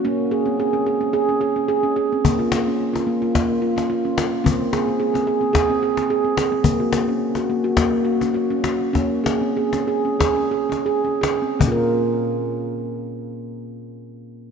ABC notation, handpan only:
X:1
M:4/4
L:1/16
Q:"Swing 16ths" 1/4=108
K:Bbm
V:1 name="Handpan"
D2 A C A D A D A D A D A D A C | z F2 D2 F B, F B,2 F D F D F2 | C2 A C A C A C A C A C A C A C | B, G2 D2 G B, G B,2 G D G D G2 |
D2 A C A D A D A D A D A D A C | z16 |]
V:2 name="Handpan"
B,16 | B,16 | B,16 | z16 |
B,16 | [B,,B,DFB]16 |]